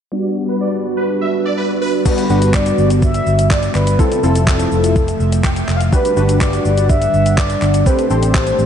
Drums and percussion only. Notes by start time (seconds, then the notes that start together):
2.06 kick, crash, shaker
2.18 closed hi-hat, shaker
2.30 shaker
2.42 closed hi-hat, shaker
2.54 kick, clap, shaker
2.66 closed hi-hat, shaker
2.78 shaker
2.90 closed hi-hat, shaker
3.02 kick, shaker
3.14 closed hi-hat, shaker
3.27 shaker
3.39 closed hi-hat, shaker
3.51 kick, clap, shaker
3.63 closed hi-hat, shaker
3.75 clap, shaker
3.87 closed hi-hat, shaker
3.99 kick, shaker
4.12 closed hi-hat, shaker
4.23 shaker
4.35 closed hi-hat, shaker
4.47 kick, clap, shaker
4.60 closed hi-hat, shaker
4.72 shaker
4.84 closed hi-hat, shaker
4.96 kick, shaker
5.08 closed hi-hat, shaker
5.20 shaker
5.32 closed hi-hat, shaker
5.44 kick, clap, shaker
5.56 closed hi-hat, shaker
5.68 clap, shaker
5.81 closed hi-hat, shaker
5.93 kick, shaker
6.05 closed hi-hat, shaker
6.17 shaker
6.29 closed hi-hat, shaker
6.41 kick, clap, shaker
6.53 closed hi-hat, shaker
6.65 shaker
6.78 closed hi-hat, shaker
6.89 kick, shaker
7.02 closed hi-hat, shaker
7.14 shaker
7.26 closed hi-hat, shaker
7.38 kick, clap, shaker
7.50 closed hi-hat, shaker
7.62 clap, shaker
7.74 closed hi-hat, shaker
7.86 kick, shaker
7.99 closed hi-hat, shaker
8.10 shaker
8.23 closed hi-hat, shaker
8.35 kick, clap, shaker
8.47 closed hi-hat, shaker
8.59 shaker